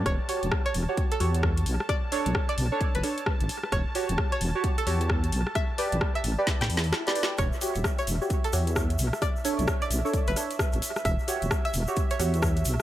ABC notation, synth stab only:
X:1
M:4/4
L:1/16
Q:"Swing 16ths" 1/4=131
K:Edor
V:1 name="Synth stab"
z2 [FGc] z4 [FGc] z2 [FGc]2 z4 | z2 [DAc]2 z3 [DAc] z2 [DAc] z4 z | z2 [FGc] z4 [FGc] z2 [FGc]2 z4 | z2 [GBd]2 z3 [GBd] z4 z [GBd] [GBd] z |
z2 [FGc] z4 [FGc] z2 [FGc]2 z4 | z2 [DAc]2 z3 [DAc] z2 [DAc] z4 z | z2 [FGc] z4 [FGc] z2 [FGc]2 z4 |]